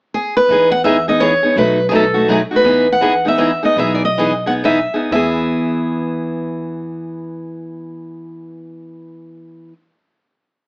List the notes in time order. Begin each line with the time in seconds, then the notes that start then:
0.14 G#4
0.37 B4
0.49 E2 E3 B3 D#4 G#4
0.71 F#5
0.84 E3 B3 D#4 G#4 E5
1.08 B3 D#4 G#4 D#5
1.20 E3 B3 D#4 G#4 C#5
1.43 B3 D#4 G#4
1.56 B1 B2 F#3 A3 D#4 F#4 B4
1.89 B2 F#3 A3 D#4 F#4 G#4
1.95 A4
2.14 A3 D#4 F#4
2.28 B2 F#3 A3 D#4 F#4 G#4
2.51 A3 D#4 F#4
2.56 B4
2.64 E2 E3 B3 D#4 G#4
2.92 F#5
3.01 E3 B3 D#4 G#4
3.25 B3 D#4 G#4 E5
3.38 E3 B3 D#4 G#4
3.63 B3 D#4 G#4 D#5
3.76 B1 E3 B3 D#4 G#4 E5
3.95 D5
4.05 D#5
4.18 E3 B3 D#4 G#4
4.46 B3 D#4 G#4 F#5
4.64 E3 B3 D#4 G#4 E5
4.94 B3 D#4 G#4
5.11 E2 E3 B3 E5
5.15 G#4